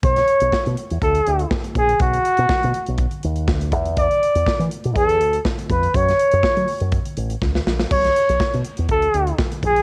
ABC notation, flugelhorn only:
X:1
M:4/4
L:1/8
Q:1/4=122
K:Bdor
V:1 name="Flugelhorn"
c3 z A2 z G | F4 z4 | d3 z A2 z B | c4 z4 |
c3 z A2 z G |]